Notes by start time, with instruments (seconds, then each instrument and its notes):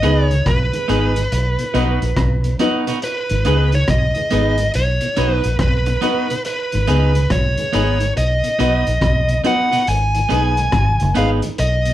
Already playing: lead electric guitar D#5
0.03 fingered electric bass C#2, tonewheel organ G#3 B3 D#4, clean electric guitar B3 D#4 G#4 B4, upright piano D#4 G#4 B4, closed hi-hat
0.25 lead electric guitar C#5
0.30 tonewheel organ G#2 D#3, closed hi-hat
0.46 fingered electric bass B1, lead electric guitar B4, kick, cross-stick, closed hi-hat
0.73 tonewheel organ G#2 D#3, upright piano G#4 B4, closed hi-hat
0.88 fingered electric bass G#1, tonewheel organ G#3 B3 D#4, clean electric guitar B3 D#4 G#4 B4, upright piano D#4 G#4 B4, closed hi-hat
1.16 tonewheel organ G#2 D#3, closed hi-hat
1.32 fingered electric bass B1, closed hi-hat
1.58 tonewheel organ B2, closed hi-hat
1.74 fingered electric bass B1, tonewheel organ F#3 B3 D#4, clean electric guitar B3 D#4 F#4 B4, upright piano D#4 F#4 B4, closed hi-hat
2.02 fingered electric bass A#1, muted clean electric guitar stroke, closed hi-hat
2.17 fingered electric bass B1, kick, cross-stick, closed hi-hat
2.44 tonewheel organ B2, closed hi-hat
2.59 tonewheel organ F#3 B3 D#4, clean electric guitar B3 D#4 F#4 B4, upright piano D#4 F#4 B4, closed hi-hat
2.87 tonewheel organ B2, clean electric guitar B3 D#4 F#4 B4, closed hi-hat
3.02 lead electric guitar B4, closed hi-hat
3.30 fingered electric bass G#1, tonewheel organ G#2 D#3, closed hi-hat
3.45 fingered electric bass C#2, tonewheel organ G#3 B3 D#4, clean electric guitar B3 D#4 G#4 B4, upright piano D#4 G#4 B4, closed hi-hat
3.72 tonewheel organ G#2 D#3, lead electric guitar C#5, closed hi-hat
3.88 fingered electric bass B1, lead electric guitar D#5, kick, cross-stick, closed hi-hat
4.15 tonewheel organ G#2 D#3, upright piano G#4 B4, closed hi-hat
4.31 fingered electric bass G#1, tonewheel organ G#3 B3 D#4, clean electric guitar B3 D#4 G#4 B4, upright piano D#4 G#4 B4, closed hi-hat
4.58 tonewheel organ G#2 D#3, closed hi-hat
4.74 fingered electric bass B1, lead electric guitar C#5, closed hi-hat
5.01 tonewheel organ B2, closed hi-hat
5.16 fingered electric bass B1, tonewheel organ F#3 B3 D#4, clean electric guitar B3 D#4 F#4 B4, upright piano D#4 F#4 B4, closed hi-hat
5.33 lead electric guitar B4
5.44 fingered electric bass A#1, closed hi-hat
5.59 fingered electric bass B1, lead electric guitar B4, kick, cross-stick, closed hi-hat
5.86 tonewheel organ B2, muted clean electric guitar stroke, closed hi-hat
6.01 tonewheel organ F#3 B3 D#4, clean electric guitar B3 D#4 F#4 B4, upright piano D#4 F#4 B4, closed hi-hat
6.30 tonewheel organ B2, closed hi-hat
6.45 lead electric guitar B4, closed hi-hat
6.72 fingered electric bass G#1, tonewheel organ G#2 D#3, closed hi-hat
6.87 fingered electric bass C#2, tonewheel organ G#3 B3 D#4, clean electric guitar B3 D#4 G#4 B4, upright piano D#4 G#4 B4, closed hi-hat
7.15 tonewheel organ G#2 D#3, closed hi-hat
7.30 fingered electric bass B1, lead electric guitar C#5, kick, cross-stick, closed hi-hat
7.58 tonewheel organ G#2 D#3, upright piano G#4 B4, closed hi-hat
7.73 fingered electric bass G#1, tonewheel organ G#3 B3 D#4, clean electric guitar B3 D#4 G#4 B4, upright piano D#4 G#4 B4, closed hi-hat
8.01 tonewheel organ G#2 D#3, closed hi-hat
8.17 fingered electric bass B1, lead electric guitar D#5, closed hi-hat
8.44 tonewheel organ B2, closed hi-hat
8.59 fingered electric bass B1, tonewheel organ F#3 B3 D#4, clean electric guitar B3 D#4 F#4 B4, upright piano D#4 F#4 B4, closed hi-hat
8.87 fingered electric bass A#1, closed hi-hat
9.01 fingered electric bass B1, kick, cross-stick, closed hi-hat
9.29 tonewheel organ B2, closed hi-hat
9.44 tonewheel organ F#3 B3 D#4, clean electric guitar B3 D#4 F#4 B4, upright piano D#4 F#4 B4, lead electric guitar F#5, closed hi-hat
9.71 tonewheel organ B2, clean electric guitar B3 D#4 F#4 B4, closed hi-hat
9.87 fingered electric bass G#1, lead electric guitar G#5, closed hi-hat
10.15 tonewheel organ G#2 D#3, closed hi-hat
10.29 fingered electric bass B1, tonewheel organ G#3 B3 D#4, clean electric guitar B3 D#4 G#4 B4, upright piano D#4 G#4 B4, closed hi-hat
10.57 tonewheel organ G#2 D#3, closed hi-hat
10.72 fingered electric bass G#1, kick, cross-stick, closed hi-hat
11.00 fingered electric bass F#1, tonewheel organ G#2 D#3, closed hi-hat
11.15 fingered electric bass G#1, tonewheel organ G#3 B3 D#4, clean electric guitar B3 D#4 G#4 B4, upright piano D#4 G#4 B4, lead electric guitar F5, closed hi-hat
11.42 tonewheel organ G#2 D#3, closed hi-hat
11.58 fingered electric bass B1, lead electric guitar D#5, closed hi-hat
11.85 tonewheel organ B2, closed hi-hat